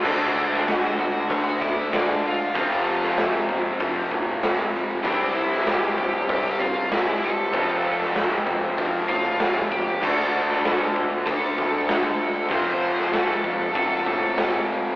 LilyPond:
<<
  \new Staff \with { instrumentName = "Lead electric guitar" } { \time 4/4 \key d \dorian \tempo 4 = 96 <c' c''>8 <d' d''>8 <fis' fis''>8 <fis' fis''>4 <e' e''>8 <d' d''>8 <f' f''>8~ | <f' f''>4 r2. | <d' d''>8 <e' e''>8 <g' g''>8 <g' g''>4 <f' f''>8 <e' e''>8 <a' a''>8~ | <a' a''>4 r4. <f' f''>4 <g' g''>8 |
<a' a''>4. r8 <a' a''>2 | <c'' c'''>4 <a' a''>4 <a' a''>4. r8 | }
  \new Staff \with { instrumentName = "Overdriven electric guitar" } { \time 4/4 \key d \dorian <d a d' fis'>1 | <f a c' f'>1 | <c e g c' e'>1 | <f a c' f'>1 |
<d a d' fis'>1 | <f a c' f'>1 | }
  \new Staff \with { instrumentName = "Distorted electric guitar" } { \clef bass \time 4/4 \key d \dorian <d a d'>2~ <d a d'>8 <d a d'>8 <d a d'>4 | <f, c f>2~ <f, c f>8 <f, c f>8 <f, c f>4 | <c g c'>2~ <c g c'>8 <c g c'>8 <c g c'>4 | <f, c f>2~ <f, c f>8 <f, c f>8 <f, c f>4 |
<d a d'>2~ <d a d'>8 <d a d'>8 <d a d'>4 | <f, c f>2~ <f, c f>8 <f, c f>8 <f, c f>4 | }
  \new Staff \with { instrumentName = "Overdriven electric guitar" } { \clef bass \time 4/4 \key d \dorian <d a d'>2 <d a d'>2 | <f, c f>2 <f, c f>2 | <c g c'>2 <c g c'>2 | <f, c f>2 <f, c f>2 |
<d a d'>2 <d a d'>2 | <f, c f>2 <f, c f>2 | }
  \new Staff \with { instrumentName = "Picked electric bass" } { \clef bass \time 4/4 \key d \dorian d,4. d,8 d,8 d,4. | f,4. f,8 f,8 a,4. | c,4. c,8 c,8 c,4. | f,4. f,8 f,8 a,4. |
d,4. d,8 d,8 d,4. | f,4. f,8 f,8 a,4. | }
  \new DrumStaff \with { instrumentName = "Drums" } \drummode { \time 4/4 <cymc bd>8. sn16 <hho sn>8 bd8 <hho bd>8 <bd sn>8 <hho sn>4 | <hho bd>8. sn16 <hho sn>8 bd8 <hho bd>8 bd8 <hho sn>4 | <hho bd>8. sn16 <hho sn>8 bd8 <hho bd>8 bd8 <hho sn>4 | <hho bd>8. sn16 <hho sn>8 bd8 <hho bd>8 <bd sn>8 <hho sn>8 bd8 |
<cymc bd>8. sn16 <hho sn>8 bd8 <hho bd>8 <bd sn>8 <hho sn>4 | <hho bd>8. sn16 <hho sn>8 bd8 <hho bd>8 <bd sn>8 <hho sn>4 | }
>>